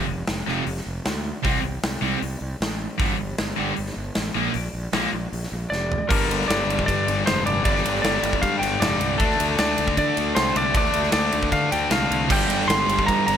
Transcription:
0.09 fingered electric bass F1
0.27 fingered electric bass F1, snare, open hi-hat
0.47 fingered electric bass F1, distorted electric guitar F2 C3 F3, snare
0.67 fingered electric bass F1, open hi-hat
0.77 snare
0.86 fingered electric bass F1
1.05 fingered electric bass D2, snare, open hi-hat
1.44 fingered electric bass C2, distorted electric guitar C3 G3 C4, kick, open hi-hat
1.63 fingered electric bass C2
1.83 fingered electric bass C2, snare, open hi-hat
2.01 fingered electric bass C2, distorted electric guitar C3 G3 C4
2.22 fingered electric bass C2, open hi-hat
2.41 fingered electric bass C2
2.61 fingered electric bass A1, snare, open hi-hat
2.98 fingered electric bass G1, distorted electric guitar G2 D3 G3, kick, open hi-hat
3.19 fingered electric bass G1
3.38 fingered electric bass G1, snare, open hi-hat
3.56 fingered electric bass G1, distorted electric guitar G2 D3 G3
3.76 fingered electric bass G1, open hi-hat
3.86 snare
3.96 fingered electric bass G1
4.15 fingered electric bass A1, snare, open hi-hat
4.35 fingered electric bass A#1, distorted electric guitar A#2 F3 A#3
4.54 fingered electric bass A#1, open hi-hat
4.73 fingered electric bass A#1
4.93 fingered electric bass A#1, distorted electric guitar A#2 F3 A#3, snare, open hi-hat
5.13 fingered electric bass A#1
5.32 fingered electric bass A#1, open hi-hat
5.43 snare
5.52 fingered electric bass A#1
5.70 fingered electric bass F1, lead electric guitar D5, snare
5.92 floor tom
6.09 fingered electric bass G1, distorted electric guitar G2 D3 G3, lead electric guitar A#4, kick, crash
6.22 snare
6.29 fingered electric bass G1, ride
6.41 snare
6.48 fingered electric bass G1, lead electric guitar D5, snare, ride
6.67 fingered electric bass G1, ride
6.79 kick
6.86 fingered electric bass G2, lead electric guitar D5, kick, ride
7.08 fingered electric bass G1, ride
7.26 fingered electric bass F1, lead electric guitar C5, snare, ride
7.46 fingered electric bass F1, lead electric guitar D5, ride
7.64 fingered electric bass G1, distorted electric guitar G2 D3 G3, lead electric guitar D5, kick, ride
7.76 snare
7.85 fingered electric bass G1, ride
7.95 snare
8.02 fingered electric bass G1, lead electric guitar D5, snare, ride
8.22 fingered electric bass G1, ride
8.33 kick
8.42 fingered electric bass G2, lead electric guitar F5, kick, ride
8.59 fingered electric bass G1, lead electric guitar G5, ride
8.80 fingered electric bass F1, lead electric guitar D5, snare, ride
9.00 fingered electric bass C2, ride
9.17 fingered electric bass D2, distorted electric guitar D3 A3 D4, lead electric guitar A4, kick, ride
9.30 snare
9.39 fingered electric bass D2, ride
9.58 fingered electric bass D2, lead electric guitar D5, snare, ride
9.78 fingered electric bass D2, ride
9.88 kick
9.97 fingered electric bass D3, lead electric guitar D5, kick, ride
10.17 fingered electric bass D2, ride
10.35 fingered electric bass C2, lead electric guitar C5, snare, ride
10.56 fingered electric bass C2, lead electric guitar D5, ride
10.73 fingered electric bass D2, distorted electric guitar D3 A3 D4, lead electric guitar D5, kick, ride
10.84 snare
10.94 fingered electric bass D2, ride
11.03 snare
11.12 fingered electric bass D2, lead electric guitar D5, snare, ride
11.32 fingered electric bass D2, ride
11.43 kick
11.52 fingered electric bass D3, lead electric guitar F5, kick, ride
11.72 fingered electric bass D2, lead electric guitar G5, ride
11.91 fingered electric bass C2, lead electric guitar F5, snare, ride
12.11 fingered electric bass C2, ride
12.29 fingered electric bass G1, distorted electric guitar G2 D3 G3, lead electric guitar G5, kick, crash
12.49 fingered electric bass G1, ride
12.61 snare
12.68 fingered electric bass G1, lead electric guitar C6, snare, ride
12.87 fingered electric bass G1, distorted electric guitar G2 D3 G3, ride
12.99 kick
13.06 fingered electric bass G2, lead electric guitar A#5, kick, ride
13.27 fingered electric bass G1, lead electric guitar A#5, ride

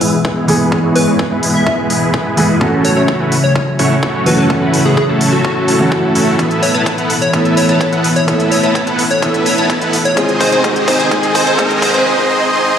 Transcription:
Already playing: analog synth pad B2 E3 G#3 E4, felt piano E3 G#3 B3 G#4
0.01 supersaw synth G#3 B3 E4 G#4 E5, open hi-hat
0.25 supersaw synth G#3 B3 E4 G#4 E5, kick
0.48 felt piano E3 G#3 B3 G#4, supersaw synth G#3 B3 E4 G#4 B4, open hi-hat
0.71 felt piano E3 G#3 B3 G#4, kick
0.84 supersaw synth G#3 B3 E4 G#4 C#5
0.96 digital synth lead B4, open hi-hat
1.07 supersaw synth G#3 B3 E4 G#4 C#5
1.19 kick
1.31 supersaw synth G#3 B3 E4 G#4 B4
1.43 open hi-hat
1.55 digital synth lead E5
1.66 supersaw synth G#3 B3 E4 G#4 B4, kick
1.90 supersaw synth G#3 B3 E4 G#4 B4, open hi-hat
2.14 kick
2.37 felt piano E3 G#3 B3 G#4, supersaw synth G#3 B3 E4 G#4 B4, open hi-hat
2.60 analog synth pad C#3 F#3 A3, felt piano E3 A3 C#4 F#4, supersaw synth A3 C#4 E4 F#4 A4, kick
2.85 digital synth lead C#5, open hi-hat
2.96 supersaw synth A3 C#4 E4 F#4 C#5, digital synth lead C#5
3.08 kick
3.20 supersaw synth A3 C#4 E4 F#4 B4
3.32 open hi-hat
3.44 digital synth lead C#5
3.56 kick
3.79 supersaw synth A3 C#4 E4 F#4 C#5, open hi-hat
4.03 supersaw synth A3 C#4 E4 F#4 C#5, kick
4.26 felt piano E3 A3 C#4 F#4, supersaw synth A3 C#4 E4 F#4 A4, digital synth lead B4, open hi-hat
4.38 digital synth lead B4
4.49 felt piano E3 A3 C#4 F#4, kick
4.62 supersaw synth A3 C#4 E4 F#4 B4
4.74 open hi-hat
4.85 supersaw synth A3 C#4 E4 F#4 B4, digital synth lead G#4
4.97 digital synth lead G#4, kick
5.09 supersaw synth A3 C#4 E4 F#4 A4
5.21 open hi-hat
5.32 digital synth lead F#4
5.45 supersaw synth A3 C#4 E4 F#4 A4, kick
5.68 supersaw synth A3 C#4 E4 F#4 A4, open hi-hat
5.79 felt piano E3 A3 C#4 F#4
5.92 kick
6.15 supersaw synth A3 C#4 E4 F#4 A4, open hi-hat
6.38 felt piano A2 E3 A3 B3 A4, analog synth pad B2 E3, supersaw synth B3 E4 A4 B4 E5, kick, closed hi-hat, riser
6.51 closed hi-hat
6.62 digital synth lead C#5, open hi-hat
6.74 supersaw synth B3 E4 A4 B4 A5, digital synth lead C#5, closed hi-hat
6.86 kick, closed hi-hat
6.98 supersaw synth B3 E4 A4 B4 F#5, closed hi-hat
7.10 open hi-hat
7.22 digital synth lead C#5, closed hi-hat
7.32 felt piano A2 E3 A3 B3 A4, supersaw synth B3 E4 A4 B4 E5, kick, closed hi-hat
7.45 closed hi-hat
7.57 digital synth lead C#5, open hi-hat
7.69 supersaw synth B3 E4 A4 B4 A5, digital synth lead C#5, closed hi-hat
7.81 kick, closed hi-hat
7.93 supersaw synth B3 E4 A4 B4 F#5, closed hi-hat
8.04 open hi-hat
8.16 digital synth lead C#5, closed hi-hat
8.27 felt piano A2 E3 A3 B3 A4, supersaw synth B3 E4 A4 B4 E5, kick, closed hi-hat
8.40 closed hi-hat
8.52 digital synth lead C#5, open hi-hat
8.63 supersaw synth B3 E4 A4 B4 A5, digital synth lead C#5, closed hi-hat
8.75 kick, closed hi-hat
8.87 supersaw synth B3 E4 A4 B4 F#5, closed hi-hat
8.99 open hi-hat
9.11 digital synth lead C#5, closed hi-hat
9.21 felt piano A2 E3 A3 B3 A4, supersaw synth B3 E4 A4 B4 E5, kick, closed hi-hat
9.34 closed hi-hat
9.46 digital synth lead C#5, open hi-hat
9.58 supersaw synth B3 E4 A4 B4 A5, digital synth lead C#5, closed hi-hat
9.70 kick, closed hi-hat
9.81 supersaw synth B3 E4 A4 B4 F#5, closed hi-hat
9.93 open hi-hat
10.05 digital synth lead C#5, closed hi-hat
10.16 felt piano G#2 D#3 G#3 C4 G#4, analog synth pad C3 D#3 G#3 D#4, supersaw synth C4 D#4 G#4 C5 D#5, kick, closed hi-hat
10.29 closed hi-hat
10.41 digital synth lead C5, kick, open hi-hat
10.52 supersaw synth C4 D#4 G#4 C5 G#5, digital synth lead C5, closed hi-hat
10.63 felt piano G#2 D#3 G#3 C4 G#4, supersaw synth C4 D#4 G#4 C5 D#5, kick, closed hi-hat
10.76 closed hi-hat
10.88 digital synth lead C5, kick, open hi-hat
11.00 supersaw synth C4 D#4 G#4 C5 G#5, digital synth lead C5, closed hi-hat
11.10 felt piano G#2 D#3 G#3 C4 G#4, supersaw synth C4 D#4 G#4 C5 D#5, kick, closed hi-hat
11.23 closed hi-hat
11.35 digital synth lead C5, kick, open hi-hat
11.47 supersaw synth C4 D#4 G#4 C5 G#5, digital synth lead C5, closed hi-hat
11.57 felt piano G#2 D#3 G#3 C4 G#4, supersaw synth C4 D#4 G#4 C5 D#5, kick, closed hi-hat
11.70 closed hi-hat
11.82 digital synth lead C5, kick, open hi-hat
11.94 supersaw synth C4 D#4 G#4 C5 G#5, digital synth lead C5, closed hi-hat
12.06 supersaw synth C4 D#4 G#4 C5 D#5
12.29 supersaw synth C4 D#4 G#4 C5 D#5
12.53 supersaw synth C4 D#4 G#4 C5 D#5

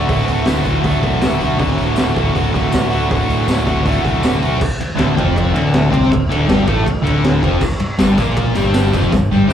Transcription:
Already playing: overdriven electric guitar A3 F#4
0.07 picked electric bass D1, overdriven electric guitar D2 A2 D3 A3, kick, open hi-hat
0.12 overdriven electric guitar F#4
0.18 snare
0.27 picked electric bass D1, open hi-hat
0.45 picked electric bass D1, overdriven electric guitar A2 D3 A3, snare, open hi-hat, tambourine
0.50 overdriven electric guitar F#4
0.63 overdriven electric guitar A3 F#4, kick, open hi-hat
0.68 overdriven electric guitar D3
0.82 picked electric bass D1, overdriven electric guitar D2 A2 D3 A3, kick, open hi-hat
0.88 overdriven electric guitar F#4
1.01 picked electric bass B1, overdriven electric guitar A3 F#4, kick, open hi-hat
1.07 overdriven electric guitar D3
1.21 picked electric bass D1, snare, open hi-hat, tambourine
1.39 picked electric bass B1, overdriven electric guitar A3 F#4, open hi-hat
1.43 overdriven electric guitar D3
1.57 picked electric bass D1, overdriven electric guitar D2 A2 D3 A3, kick, open hi-hat
1.62 overdriven electric guitar F#4
1.70 snare
1.78 picked electric bass D1, open hi-hat
1.95 picked electric bass D1, overdriven electric guitar A2 D3 A3 F#4, snare, open hi-hat, tambourine
2.15 overdriven electric guitar A3 F#4, kick, open hi-hat
2.19 overdriven electric guitar D3
2.32 picked electric bass D1, overdriven electric guitar D2 A2 D3 A3, kick, open hi-hat
2.36 overdriven electric guitar F#4
2.52 picked electric bass D1, overdriven electric guitar A3 F#4, kick, open hi-hat
2.57 overdriven electric guitar D3
2.72 picked electric bass D1, snare, open hi-hat, tambourine
2.90 overdriven electric guitar A3 F#4, open hi-hat
2.95 overdriven electric guitar D3
3.08 picked electric bass D1, overdriven electric guitar D2 A2 D3 A3, kick, open hi-hat
3.12 overdriven electric guitar F#4
3.27 picked electric bass D1, open hi-hat
3.45 picked electric bass D1, overdriven electric guitar A2 D3, snare, open hi-hat, tambourine
3.50 overdriven electric guitar A3 F#4
3.66 overdriven electric guitar A3 F#4, kick, open hi-hat
3.70 overdriven electric guitar D3
3.77 snare
3.82 picked electric bass D1, overdriven electric guitar D2 A2 D3, kick, open hi-hat
3.86 overdriven electric guitar A3 F#4
4.02 picked electric bass B1, overdriven electric guitar A3 F#4, kick, open hi-hat
4.06 overdriven electric guitar D3
4.22 picked electric bass D1, snare, open hi-hat, tambourine
4.40 picked electric bass B1, overdriven electric guitar A3 F#4, open hi-hat
4.44 overdriven electric guitar D3
4.61 kick, crash
4.81 muted overdriven electric guitar stroke, muted picked electric bass stroke, ride
4.96 picked electric bass D1, overdriven electric guitar D2 D3, snare, ride
5.16 picked electric bass F1, overdriven electric guitar F2 F3, kick, ride
5.37 kick, ride
5.53 picked electric bass D1, overdriven electric guitar D2 D3, ride
5.74 snare, ride
5.91 picked electric bass C2, overdriven electric guitar C3 C4, kick, ride
6.11 picked electric bass D1, overdriven electric guitar D2, kick, ride
6.28 picked electric bass D1, overdriven electric guitar D2 D3, ride
6.47 picked electric bass G1, overdriven electric guitar G2 G3, snare, ride
6.67 picked electric bass A1, overdriven electric guitar A2 A3, kick, ride
6.86 muted picked electric bass stroke, muted overdriven electric guitar stroke, kick, ride
7.03 picked electric bass D1, overdriven electric guitar D2 D3, ride
7.24 snare, ride
7.43 picked electric bass F1, overdriven electric guitar F2 F3, kick, ride
7.61 kick, tambourine, crash
7.80 muted overdriven electric guitar stroke, muted picked electric bass stroke, ride
7.98 picked electric bass G1, overdriven electric guitar G2 G3, snare, ride, tambourine
8.18 picked electric bass A#1, overdriven electric guitar A#2 A#3, kick, ride, tambourine
8.37 kick, ride, tambourine
8.55 picked electric bass G1, overdriven electric guitar G2 G3, ride, tambourine
8.74 snare, ride, tambourine
8.93 picked electric bass F1, overdriven electric guitar F2 F3, kick, ride, tambourine
9.12 picked electric bass G1, overdriven electric guitar G2, kick, snare, tambourine
9.31 picked electric bass G1, overdriven electric guitar G2 G3, tambourine
9.48 picked electric bass C2, overdriven electric guitar C3 C4, high tom

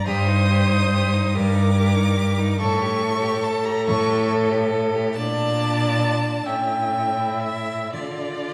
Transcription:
0.04 cello G2, violin G4 D#6, viola C5
0.29 violin D#4
0.50 violin G4
0.72 violin D#4
0.92 violin G4
1.14 violin D#4
1.34 cello G2, violin G4 D6, viola A#4
1.56 violin D#4
1.75 violin G4
1.97 violin D#4
2.17 violin G4
2.39 violin D#4
2.60 cello A2, violin A4 C#6, viola A4
2.82 violin G4
3.02 violin A4
3.22 violin G4
3.43 violin A4 A5
3.65 violin G4 A#5
3.86 cello A2, violin A4 C#6
4.08 violin G4
4.30 violin A4
4.52 violin G4
4.72 violin A4
4.95 violin G4
5.12 cello A#2, viola D5, violin A5
5.18 violin D4
6.45 cello A2, violin C#4 G5, viola E5
7.16 violin E4
7.41 violin E5
7.92 cello D3, violin F4 D5, viola D5

